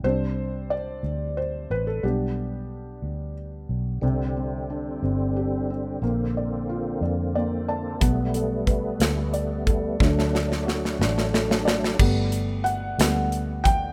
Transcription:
<<
  \new Staff \with { instrumentName = "Felt piano" } { \time 6/8 \key g \major \tempo 4. = 60 << { c''4 d''4 c''8 b'16 a'16 | g'2 r4 | r2. | r2 d''8 a''8 |
r2. | r2 r8 d''8~ | d''4 fis''4. g''8 | } \\ { <g c' d'>4. r4. | <g b d'>2. | c8 c'8 d'8 c'8 g'8 c'8 | bes8 d''8 f'8 d''8 bes8 d''8 |
b8 a'8 b'8 a'8 d''8 a'8 | d8 d'8 fis'8 d'8 a'8 d'8 | <g a b>8 r4 <g a b>8 r4 | } >> }
  \new Staff \with { instrumentName = "Tonewheel organ" } { \time 6/8 \key g \major r2. | r2. | c'2. | c'2. |
b2. | d'2. | r2. | }
  \new Staff \with { instrumentName = "Tonewheel organ" } { \clef bass \time 6/8 \key g \major << { r2. | r2. | g2. | bes2. |
a2.~ | a2. | r2. | } \\ { r2. | r2. | d2.~ | d2. |
g2. | fis2. | r2. | } >> }
  \new Staff \with { instrumentName = "Fingered electric bass" } { \clef bass \time 6/8 \key g \major c,4. d,4 a,,8 | b,,4. d,4 b,,8 | c,4. g,,4. | bes,,4. f,4. |
b,,4. d,4. | d,4. a,,4. | g,,4. d,4. | }
  \new DrumStaff \with { instrumentName = "Drums" } \drummode { \time 6/8 r4. r4. | r4. r4. | r4. r4. | r4. r4. |
<hh bd>8 hh8 <hh bd>8 <hh sn>8 hh8 <hh bd>8 | <bd sn>16 sn16 sn16 sn16 sn16 sn16 sn16 sn16 sn16 sn16 sn16 sn16 | <cymc bd>8 hh8 hh8 <hh sn>8 hh8 <hh bd>8 | }
>>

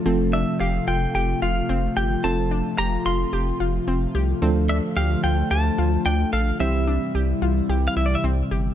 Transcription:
<<
  \new Staff \with { instrumentName = "Clean electric guitar" } { \time 4/4 \key f \major \tempo 4 = 110 r8 e''8 f''8 g''8 g''8 f''4 g''8 | a''4 bes''8 c'''4 r4. | r8 e''8 f''8 g''8 a''4 g''8 f''8 | e''2~ \tuplet 3/2 { e''8 f''16 e''16 d''16 e''16 } r4 | }
  \new Staff \with { instrumentName = "Synth pluck" } { \time 4/4 \key f \major c'8 d'8 g'8 f'8 g'8 f'8 c'8 g'8 | c'8 d'8 g'8 f'8 g'8 f'8 c'8 g'8 | c'8 d'8 g'8 f'8 g'8 f'8 d'8 a'8 | c'8 d'8 g'8 f'8 g'8 e'8 c'8 g'8 | }
  \new Staff \with { instrumentName = "FM electric piano" } { \time 4/4 \key f \major <f a c' f' a'>1 | <f a c' f' a'>1 | <f a d' f' a'>1 | <e g c' e' g'>1 | }
  \new Staff \with { instrumentName = "Analog synth pad" } { \clef bass \time 4/4 \key f \major << { f'1~ | f'1~ | f'1 | e'1 | } \\ { <c f a>1~ | <c f a>1 | <d f a>1 | <c e g>1 | } >> }
  \new Staff \with { instrumentName = "Analog synth bass" } { \clef bass \time 4/4 \key f \major f,,4 f,,8 f,,8 f,,8 f,,8 f,,8 g,,8 | f,,4 f,,8 f,,8 f,,8 f,,8 f,,8 c,8 | d,4 d,8 d,8 d,8 d,8 d,8 bes,,8 | c,4 c,8 c,8 c,8 c,8 c,8 g,,8 | }
>>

